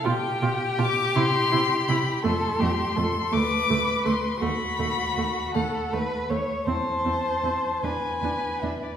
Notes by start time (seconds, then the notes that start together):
0.05 B2 F4 G4 G5
0.42 B2 F4
0.78 B2 F4 D6
1.16 C3 E4 C6
1.52 C3 E4
1.88 C3 E4 B5
2.23 F2 A3 A4 C6
2.59 F2 A3 G4
2.96 F2 A3 A4
3.32 D2 A3 B4 D6
3.69 D2 A3
4.05 D2 A3 C6
4.41 D#2 A3 F#4 B5
4.79 D#2 A3
5.17 D#2 A3
5.54 D#2 A3 A4 F#5
5.93 D#2 A3 B4
6.29 D#2 A3 C#5
6.67 E2 C4 C5 A5
7.05 E2 C4
7.43 E2 C4
7.83 E2 D4 B4 G#5
8.22 E2 D4
8.61 E2 D4 E5
8.82 D5